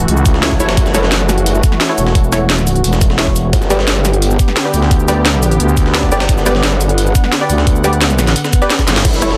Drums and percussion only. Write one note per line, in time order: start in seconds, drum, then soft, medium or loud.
0.08 closed hi-hat medium
0.17 cabasa soft
0.26 kick loud
0.26 closed hi-hat medium
0.26 cabasa medium
0.34 snare soft
0.43 snare loud
0.43 closed hi-hat medium
0.43 closed hi-hat loud
0.51 kick medium
0.60 closed hi-hat medium
0.60 cabasa medium
0.69 snare loud
0.69 closed hi-hat medium
0.77 kick loud
0.77 closed hi-hat medium
0.86 snare soft
0.86 cabasa soft
0.94 snare soft
0.94 closed hi-hat medium
0.94 cabasa medium
1.03 snare soft
1.12 snare loud
1.12 closed hi-hat medium
1.20 snare soft
1.29 snare medium
1.29 closed hi-hat medium
1.29 cabasa medium
1.38 closed hi-hat soft
1.46 closed hi-hat medium
1.55 cabasa soft
1.63 kick loud
1.63 closed hi-hat medium
1.63 cabasa medium
1.72 snare soft
1.81 snare loud
1.81 closed hi-hat medium
1.98 closed hi-hat medium
1.98 cabasa medium
2.07 snare medium
2.15 kick loud
2.15 closed hi-hat medium
2.24 cabasa soft
2.32 snare soft
2.32 closed hi-hat medium
2.32 cabasa medium
2.50 snare loud
2.50 closed hi-hat medium
2.58 snare soft
2.58 closed hi-hat soft
2.67 closed hi-hat medium
2.67 cabasa medium
2.76 closed hi-hat soft
2.84 closed hi-hat medium
2.93 snare medium
2.93 cabasa soft
3.01 kick loud
3.01 closed hi-hat medium
3.01 cabasa medium
3.10 snare soft
3.19 snare loud
3.19 closed hi-hat medium
3.27 kick medium
3.36 closed hi-hat medium
3.36 cabasa medium
3.53 kick loud
3.53 closed hi-hat medium
3.62 snare soft
3.62 cabasa soft
3.70 snare soft
3.70 closed hi-hat medium
3.70 cabasa medium
3.79 snare soft
3.88 snare loud
3.88 closed hi-hat medium
3.96 snare soft
4.05 snare medium
4.05 closed hi-hat medium
4.05 cabasa medium
4.13 closed hi-hat soft
4.22 closed hi-hat medium
4.31 cabasa soft
4.39 kick loud
4.39 closed hi-hat medium
4.39 cabasa medium
4.48 snare soft
4.57 snare loud
4.57 closed hi-hat medium
4.74 closed hi-hat medium
4.74 cabasa medium
4.82 snare medium
4.91 kick loud
4.91 closed hi-hat loud
4.91 closed hi-hat medium
5.00 cabasa soft
5.08 snare soft
5.08 closed hi-hat medium
5.08 cabasa medium
5.26 snare loud
5.26 closed hi-hat medium
5.34 snare soft
5.43 closed hi-hat medium
5.43 cabasa medium
5.51 closed hi-hat soft
5.60 closed hi-hat medium
5.69 cabasa soft
5.77 kick loud
5.77 closed hi-hat medium
5.77 cabasa medium
5.86 snare soft
5.94 snare loud
5.94 closed hi-hat medium
6.03 kick medium
6.12 closed hi-hat medium
6.12 cabasa medium
6.20 snare loud
6.20 closed hi-hat medium
6.29 kick loud
6.29 closed hi-hat loud
6.29 closed hi-hat medium
6.38 snare soft
6.38 cabasa soft
6.46 snare soft
6.46 closed hi-hat medium
6.46 cabasa medium
6.55 snare soft
6.63 snare loud
6.63 closed hi-hat loud
6.63 closed hi-hat medium
6.72 snare soft
6.81 closed hi-hat medium
6.81 cabasa medium
6.89 closed hi-hat soft
6.98 closed hi-hat medium
7.06 cabasa soft
7.15 kick loud
7.15 closed hi-hat medium
7.15 cabasa medium
7.24 snare soft
7.32 snare loud
7.32 closed hi-hat loud
7.32 closed hi-hat medium
7.50 closed hi-hat medium
7.50 cabasa medium
7.58 snare medium
7.67 kick loud
7.67 closed hi-hat loud
7.67 closed hi-hat medium
7.76 cabasa soft
7.84 snare soft
7.84 closed hi-hat medium
7.84 cabasa medium
7.93 closed hi-hat soft
8.01 snare loud
8.01 closed hi-hat medium
8.01 closed hi-hat loud
8.10 snare soft
8.10 closed hi-hat soft
8.10 cabasa soft
8.19 snare medium
8.19 closed hi-hat medium
8.19 cabasa medium
8.27 snare soft
8.27 closed hi-hat soft
8.36 closed hi-hat medium
8.36 closed hi-hat loud
8.44 snare medium
8.44 cabasa soft
8.53 kick loud
8.53 closed hi-hat medium
8.53 cabasa medium
8.62 snare soft
8.62 closed hi-hat soft
8.70 snare loud
8.70 closed hi-hat medium
8.70 closed hi-hat loud
8.79 kick medium
8.79 snare loud
8.79 closed hi-hat medium
8.79 cabasa soft
8.88 snare loud
8.88 snare medium
8.88 closed hi-hat medium
8.88 cabasa medium
8.96 snare loud
8.96 snare medium
8.96 closed hi-hat medium
9.05 kick loud
9.05 closed hi-hat medium
9.05 closed hi-hat loud
9.05 crash loud
9.13 snare soft
9.13 cabasa soft
9.22 snare soft
9.22 closed hi-hat medium
9.22 cabasa medium
9.31 snare soft